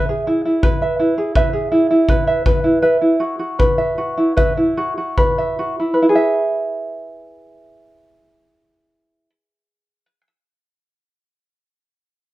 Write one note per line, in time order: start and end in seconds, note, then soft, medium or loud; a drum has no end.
0.00 0.82 E5 medium
0.09 0.62 G#4 soft
0.27 0.45 E4 medium
0.45 0.82 E4 soft
0.63 1.17 B4 medium
0.63 kick medium
0.82 0.99 E5 medium
0.99 1.71 E4 medium
1.18 1.35 G#4 soft
1.36 1.53 B4 medium
1.36 2.27 E5 medium
1.36 kick medium
1.53 2.09 G#4 soft
1.72 1.90 E4 medium
1.91 2.64 E4 soft
2.09 2.45 B4 medium
2.09 kick medium
2.27 2.83 E5 medium
2.46 2.82 B4 medium
2.46 kick medium
2.64 2.82 E4 soft
2.82 3.01 B4 medium
2.82 3.78 E5 medium
3.02 4.17 E4 soft
3.20 3.38 F#4 medium
3.39 3.97 F#4 soft
3.59 4.37 B4 medium
3.59 kick medium
3.78 4.37 E5 medium
3.98 4.76 F#4 medium
4.17 4.36 E4 soft
4.37 4.57 B4 medium
4.37 5.38 E5 medium
4.37 kick medium
4.57 5.80 E4 soft
4.77 4.96 F#4 medium
4.98 5.58 F#4 soft
5.17 5.93 B4 medium
5.17 kick medium
5.38 6.15 E5 medium
5.59 5.79 F#4 medium
5.80 6.02 E4 soft
5.94 10.05 B4 medium
6.02 6.09 E4 medium
6.09 10.21 G#4 medium
6.15 10.27 E5 medium